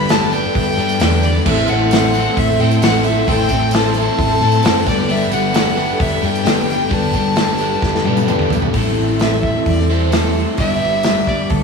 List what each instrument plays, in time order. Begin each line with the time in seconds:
Already playing: fingered electric bass G1, tonewheel organ G4 A4 D5 B5, steel-string acoustic guitar B4, fiddle B5
0.08 steel-string acoustic guitar G3 D4 A4 B4, overdriven electric guitar B3 G4, reed electric piano G4 A4 B4 D5, fiddle A5, snare, open hi-hat, tambourine
0.21 steel-string acoustic guitar D4 A4 B4, tambourine
0.31 overdriven electric guitar G3 B3 D4 G4, reed electric piano G4 A4 B4 D5, fiddle G5, tambourine
0.43 steel-string acoustic guitar D4 A4 B4, tambourine
0.55 fingered electric bass G1, reed electric piano G4 A4 B4 E5, kick, open hi-hat
0.65 steel-string acoustic guitar D4 A4 B4, tambourine
0.77 fingered electric bass G2, steel-string acoustic guitar G3 D4 A4 B4, overdriven electric guitar B3 G4, tambourine
0.89 tambourine
0.99 fingered electric bass E2, overdriven electric guitar G2 D3 B3 G4, steel-string acoustic guitar G3 D4 A4 B4, reed electric piano G4 A4 B4 D5, snare, open hi-hat, tambourine
1.13 tambourine
1.23 steel-string acoustic guitar G3 D4 A4, fiddle D5, tambourine
1.27 steel-string acoustic guitar B4
1.34 steel-string acoustic guitar A4 B4, tambourine
1.38 steel-string acoustic guitar D4
1.45 fingered electric bass A1, steel-string acoustic guitar A2 E3 A3 C4 A4 C5, reed electric piano E4 A4 C5 E5, overdriven electric guitar E4, tonewheel organ C5 E5 C6, fiddle E5, kick, tambourine, crash
1.57 tambourine
1.68 fingered electric bass A1, steel-string acoustic guitar A3 C4 A4, overdriven electric guitar E4, fiddle F#5, tambourine
1.72 steel-string acoustic guitar C5
1.91 steel-string acoustic guitar A2 E3 A3 C4 A4 C5, reed electric piano E4 A4 C5 E5, overdriven electric guitar E4, snare, open hi-hat, tambourine
2.03 steel-string acoustic guitar A3 C4 A4 C5
2.13 overdriven electric guitar C4 E4 A4, reed electric piano E4 A4 C5 E5, tambourine
2.24 steel-string acoustic guitar C4 A4 C5
2.29 steel-string acoustic guitar A3
2.37 fingered electric bass A1, reed electric piano E4 A4 C5 E5, fiddle E5, kick, open hi-hat
2.48 steel-string acoustic guitar A3 C4 A4 C5, tambourine
2.58 fingered electric bass A2, steel-string acoustic guitar A3 C4 A4, overdriven electric guitar E4, fiddle G5
2.62 steel-string acoustic guitar C5
2.71 tambourine
2.81 fingered electric bass A1, steel-string acoustic guitar A2 E3 A3 C4 A4 C5, reed electric piano E4 A4 C5 E5, overdriven electric guitar E4, fiddle F#5, snare, open hi-hat, tambourine
3.04 steel-string acoustic guitar A3 C4 A4, fiddle E5, tambourine
3.08 steel-string acoustic guitar C5
3.15 steel-string acoustic guitar C4 A4 C5, tambourine
3.19 steel-string acoustic guitar A3
3.27 fingered electric bass A1, steel-string acoustic guitar A2 E3 A3 C4 A4 C5, reed electric piano E4 A4 C5 E5, overdriven electric guitar E4, fiddle G5, kick, open hi-hat, tambourine
3.38 tambourine
3.49 fingered electric bass A1, steel-string acoustic guitar A3 C4 A4, overdriven electric guitar E4, kick, tambourine
3.53 steel-string acoustic guitar C5
3.71 steel-string acoustic guitar A2 E3, reed electric piano E4 A4 C5 E5, overdriven electric guitar E4, fiddle A5, snare, open hi-hat, tambourine
3.75 steel-string acoustic guitar A3 C4 A4 C5
3.85 steel-string acoustic guitar A3 C4 A4 C5
3.94 reed electric piano E4 A4 C5 E5, overdriven electric guitar A4, fiddle A5, tambourine
3.98 overdriven electric guitar C4 E4
4.06 steel-string acoustic guitar A3 C4 A4 C5
4.17 fingered electric bass A1, reed electric piano E4 A4 C5 E5, kick, open hi-hat
4.29 steel-string acoustic guitar A3 C4 A4 C5, tambourine
4.41 fingered electric bass A2, steel-string acoustic guitar A3 C4 A4, overdriven electric guitar E4, tambourine
4.45 steel-string acoustic guitar C5
4.52 tambourine
4.62 fingered electric bass F#1, steel-string acoustic guitar A2 E3 A3 C4 A4, reed electric piano E4 A4 C5 F#5, overdriven electric guitar E4, open hi-hat, tambourine
4.66 steel-string acoustic guitar C5, snare
4.86 fingered electric bass G1, overdriven electric guitar G2 D3 B3 G4, steel-string acoustic guitar G3 D4 A4, reed electric piano G4 A4 B4 D5, tonewheel organ G4 D5 A5 B5, fiddle D5, kick, tambourine
4.90 steel-string acoustic guitar B4
4.98 steel-string acoustic guitar D4 A4 B4, tambourine
5.09 overdriven electric guitar G2 D3 B3 G4, steel-string acoustic guitar G3 D4 A4, fiddle E5, open hi-hat, tambourine
5.13 steel-string acoustic guitar B4
5.21 tambourine
5.31 fingered electric bass G1, steel-string acoustic guitar G3 D4 A4 B4, overdriven electric guitar B3 G4, fiddle F#5, tambourine
5.53 steel-string acoustic guitar G3 D4 A4, overdriven electric guitar B3 G4, reed electric piano G4 A4 B4 D5, snare, open hi-hat, tambourine
5.58 steel-string acoustic guitar B4
5.68 steel-string acoustic guitar D4 A4 B4
5.76 overdriven electric guitar G3 B3 D4 G4, reed electric piano G4 A4 B4 E5
5.90 steel-string acoustic guitar D4 A4 B4
5.98 fingered electric bass G1, reed electric piano G4 A4 B4 D5, fiddle E5, kick, open hi-hat
6.12 steel-string acoustic guitar A4 B4, tambourine
6.17 steel-string acoustic guitar D4
6.22 fingered electric bass G2, steel-string acoustic guitar G3 D4, overdriven electric guitar B3 G4, fiddle G5, tambourine
6.27 steel-string acoustic guitar A4 B4
6.35 tambourine
6.43 fingered electric bass G1, overdriven electric guitar G2 D3 B3 G4, steel-string acoustic guitar G3 D4, reed electric piano G4 A4 B4 D5, snare, open hi-hat
6.47 steel-string acoustic guitar A4 B4, tambourine
6.67 steel-string acoustic guitar G3 D4, tonewheel organ G5, fiddle G5, tambourine
6.71 steel-string acoustic guitar A4 B4
6.79 steel-string acoustic guitar A4 B4, tambourine
6.83 steel-string acoustic guitar D4
6.89 fingered electric bass G1, overdriven electric guitar G2 D3 B3 G4, steel-string acoustic guitar G3 D4 A4, reed electric piano G4 A4 B4 D5, kick, open hi-hat, tambourine
6.93 steel-string acoustic guitar B4, fiddle A5
7.02 tambourine
7.13 fingered electric bass G1, steel-string acoustic guitar G3 D4 A4, overdriven electric guitar B3 G4, kick, tambourine
7.18 steel-string acoustic guitar B4
7.25 tambourine
7.36 steel-string acoustic guitar G3 D4 A4 B4, overdriven electric guitar B3 G4, reed electric piano G4 A4 B4 D5, snare, open hi-hat, tambourine
7.48 steel-string acoustic guitar A4 B4, tambourine
7.53 steel-string acoustic guitar D4
7.58 overdriven electric guitar G3 B3 D4 G4, reed electric piano G4 A4 B4 D5, tambourine
7.71 steel-string acoustic guitar A4 B4, tambourine
7.76 steel-string acoustic guitar D4
7.81 fingered electric bass G1, reed electric piano G4 A4 B4 D5, kick, snare, tambourine
7.95 steel-string acoustic guitar D4 A4 B4, snare
8.04 fingered electric bass G2, steel-string acoustic guitar G3 D4 A4, overdriven electric guitar B3 G4, high tom, tambourine
8.09 steel-string acoustic guitar B4
8.17 high tom, tambourine
8.28 fingered electric bass G1, overdriven electric guitar G2 D3 B3 G4, steel-string acoustic guitar G3 D4 A4 B4, reed electric piano G4 A4 B4 D5, mid tom, tambourine
8.39 mid tom, tambourine
8.49 steel-string acoustic guitar G3 D4 A4 B4, floor tom, tambourine
8.61 steel-string acoustic guitar D4 A4 B4, floor tom, tambourine
8.73 fingered electric bass A1, steel-string acoustic guitar A2 E3 G3 C4 E4 A4, tonewheel organ G4 E5 A5 C6, kick, open hi-hat
8.97 fingered electric bass A1
9.08 steel-string acoustic guitar C4 E4 A4
9.12 steel-string acoustic guitar G3
9.19 steel-string acoustic guitar A2 E3 G3 C4 E4 A4, fiddle E5, snare, open hi-hat, tambourine
9.43 steel-string acoustic guitar G3 C4 E4, fiddle E5, kick
9.47 steel-string acoustic guitar A4
9.55 steel-string acoustic guitar G3 C4 E4 A4
9.66 fingered electric bass E2, fiddle D5, kick, open hi-hat
9.78 steel-string acoustic guitar G3 C4 E4 A4
9.90 overdriven electric guitar A2 E3, steel-string acoustic guitar G3 C4 E4 A4, fiddle C5
10.11 steel-string acoustic guitar A2 E3 G3 C4 E4 A4, fiddle A4, snare, open hi-hat, tambourine
10.24 steel-string acoustic guitar G3 C4 E4 A4
10.36 steel-string acoustic guitar G3 C4 E4 A4
10.56 fingered electric bass G1, overdriven electric guitar G2 D3 B3, steel-string acoustic guitar G3 D4, tonewheel organ G4 D5 B5 D6, fiddle E5, kick, open hi-hat
10.60 steel-string acoustic guitar G4 B4
10.82 fingered electric bass G1
10.93 steel-string acoustic guitar D4 G4 B4
11.03 steel-string acoustic guitar G3 D4 G4 B4, snare, open hi-hat, tambourine
11.27 steel-string acoustic guitar G3 D4 G4, fiddle D5, kick
11.32 steel-string acoustic guitar B4
11.50 fingered electric bass D2, fiddle A4, kick, open hi-hat